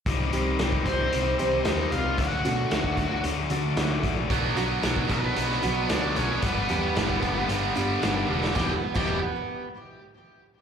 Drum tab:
CC |----------------|----------------|----------------|----------------|
HH |x-x-x-x-x-x-x-x-|x-x-x-x-x-x-x-x-|x-x-x-x-x-x-x-x-|x-x-x-x-x-x-x---|
SD |----o-------o---|----o-------o---|----o----o--o---|----o-------o--o|
T1 |----------------|----------------|----------------|--------------o-|
BD |o----oo---------|o----oo-------o-|o----oo---------|o----oo---------|

CC |---x------------|
HH |----------------|
SD |o---------------|
T1 |----------------|
BD |o--o------------|